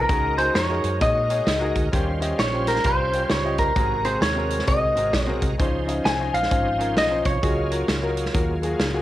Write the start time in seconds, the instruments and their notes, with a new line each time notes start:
Already playing: clean electric guitar A#4
0.08 fingered electric bass C#2, upright piano C#3 D#4 F#4 G#4 A#4, tonewheel organ G#3 D#4 F#4 A4, kick, closed hi-hat
0.14 tonewheel organ A#4
0.37 upright piano D#4 F#4 G#4 A#4, clean electric guitar C5, closed hi-hat
0.55 fingered electric bass F2, clean electric guitar C#5, snare, closed hi-hat
0.69 upright piano D#4 F#4 G#4 A#4
0.84 fingered electric bass F#2, closed hi-hat
1.00 fingered electric bass A#2, upright piano D#4 F#4 G#4 C#5, clean electric guitar D#5, kick, closed hi-hat
1.29 upright piano D#4 F#4 G#4 C#5, closed hi-hat
1.47 fingered electric bass C#2, snare, closed hi-hat
1.60 upright piano D#4 F#4 G#4 A#4
1.75 fingered electric bass D2, kick, closed hi-hat
1.92 fingered electric bass D#2, upright piano D#3 C#4 F4 G4 C5, tonewheel organ G3 C#4 F4 C5, kick, closed hi-hat
2.20 upright piano C#4 F4 G4 D#5, closed hi-hat
2.39 fingered electric bass A#1, clean electric guitar C#5, snare, closed hi-hat
2.52 upright piano C#4 F4 G4 C5
2.67 clean electric guitar A#4, snare, closed hi-hat
2.76 snare
2.83 fingered electric bass C2, upright piano C#4 F4 G4 C5, clean electric guitar C5, kick, closed hi-hat
3.12 upright piano C#4 F4 G4 C5, closed hi-hat
3.29 fingered electric bass C#2, clean electric guitar C#5, snare, closed hi-hat
3.43 upright piano C#4 F4 G4 D#5
3.58 clean electric guitar A#4, kick, closed hi-hat
3.75 fingered electric bass G#1, upright piano G#2 C4 F#4 G#4 A#4, tonewheel organ C3 G#3 F#4 A#4, kick, closed hi-hat
4.04 upright piano C4 F#4 G#4 C5, clean electric guitar C5, closed hi-hat
4.21 fingered electric bass D#2, clean electric guitar C#5, snare, closed hi-hat
4.35 upright piano C4 F#4 G#4 A#4
4.50 closed hi-hat
4.59 snare
4.66 fingered electric bass C2, upright piano C4 F#4 G#4 C5, clean electric guitar D#5, kick, closed hi-hat
4.95 fingered electric bass G#1, upright piano C4 F#4 G#4 A#4, closed hi-hat
5.13 fingered electric bass B1, kick, snare, closed hi-hat
5.21 clean electric guitar C#5
5.26 upright piano C4 F#4 G#4 A#4
5.42 fingered electric bass C2, kick, closed hi-hat
5.58 fingered electric bass C#2, upright piano C#3 C#4 D#4 F4 C5, tonewheel organ F3 C#4 D#4 C5, kick, closed hi-hat
5.86 upright piano C#4 D#4 F4 D#5, closed hi-hat
6.05 fingered electric bass C2, clean electric guitar G#5, snare, closed hi-hat
6.18 upright piano C#4 D#4 F4 D#5
6.33 fingered electric bass A#1, clean electric guitar F5, closed hi-hat
6.43 snare
6.50 fingered electric bass G#1, upright piano C#4 D#4 F4 C5, kick, closed hi-hat
6.78 upright piano C#4 D#4 F4 A#4, closed hi-hat
6.97 fingered electric bass B1, clean electric guitar D#5, snare, closed hi-hat
7.10 upright piano C#4 D#4 F4 C5
7.25 fingered electric bass C2, clean electric guitar C#5, kick, closed hi-hat
7.41 fingered electric bass C#2, upright piano C#3 A#3 F4 F#4 G#4, tonewheel organ F#3 A#3 F4 G#4, kick, closed hi-hat
7.70 upright piano A#3 F4 F#4 A#4, closed hi-hat
7.88 fingered electric bass C#2, snare, closed hi-hat
8.02 upright piano A#3 F4 F#4 A#4
8.17 closed hi-hat
8.26 snare
8.33 fingered electric bass D#2, upright piano A#3 F4 F#4 A#4, kick, closed hi-hat
8.62 upright piano A#3 F4 F#4 G#4, closed hi-hat
8.80 fingered electric bass C#2, snare, closed hi-hat
8.93 upright piano A#3 F4 F#4 G#4